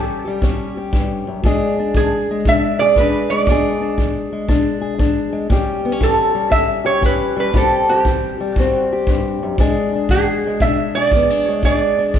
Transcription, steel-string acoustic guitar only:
Already playing: E3 G3 C#4 G4
0.27 G3
0.42 E2 C#4
0.77 G4
0.92 G2
1.27 F#2
1.45 E2 G#3 D4 G#4
1.79 D4
1.96 E3
2.31 G#3
2.47 B2 D4
2.81 G#4
2.98 E3 D4
3.32 G#3
3.48 E2 G#3 D4 G#4
3.81 D4
3.98 E3
4.32 G#3
4.49 B2 D4
4.81 G#4
4.98 E3 D4
5.33 G#3
5.49 A2 G3 C#4 G4
5.85 B3
5.92 C#4
6.01 E3
6.35 G3
6.50 E2 C#4
6.85 G4
7.01 E3 C#4
7.36 G3
7.54 A2 G3 C4 G4
7.89 C4
8.06 E3
8.40 G3
8.58 E2 C4
8.93 G4
9.08 G2
9.43 F#2
9.59 E2 G#3 D4 G#4
9.95 D4
10.12 E3
10.47 G#3
10.61 B2 D4
10.97 G#4
11.14 E3 B3
11.30 D4
11.49 G#3
11.64 E2 G#3 D4 G#4
11.99 D4
12.14 E3

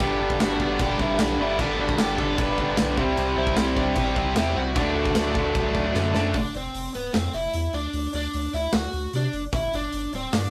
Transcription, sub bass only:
0.00 G1
0.20 G1
0.40 G1
0.80 E1
1.00 G1
1.19 B1
1.39 G1
1.59 G1
1.79 G1
1.99 G1
2.38 E1
2.58 G1
2.78 B1
2.97 C2
3.17 C2
3.36 C2
3.57 C2
3.96 A1
4.16 C2
4.36 E2
4.56 C2
4.76 D2
4.95 D2
5.15 D2
5.55 C2
5.75 D2
5.95 F#2
6.15 F#2
6.34 F1
6.55 F1
6.74 F1
6.95 C1
7.14 F2
7.33 F1
7.54 E2
7.73 D2
7.93 D2
8.14 D2
8.34 D2
8.53 D2
8.73 D2
8.93 D2
9.13 C3
9.33 F#1
9.53 G1
9.73 G1
9.93 G1
10.12 D1
10.33 G2

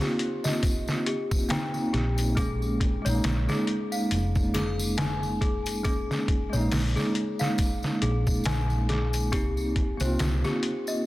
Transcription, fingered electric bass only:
1.94 A#1
3.06 A#1
3.24 A#1
4.11 F1
6.54 A#1
6.72 A#1
8.02 A#1
8.46 A#1
9.33 C2
10.01 C2
10.20 C2

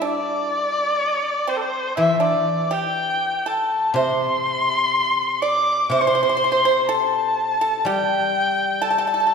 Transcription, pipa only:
0.02 D4
0.76 C#4
0.93 C4
1.47 C4
1.97 E4
2.20 D4
2.71 G4
3.46 A4
3.96 C5
5.42 D5
5.91 C5
6.01 C5
6.07 C5
6.15 C5
6.23 C5
6.29 C5
6.37 C5
6.44 C5
6.52 C5
6.65 C5
6.89 A4
7.61 A4
7.86 G4
8.82 A4
8.91 A4
8.98 A4
9.07 A4
9.14 A4
9.20 A4
9.27 A4

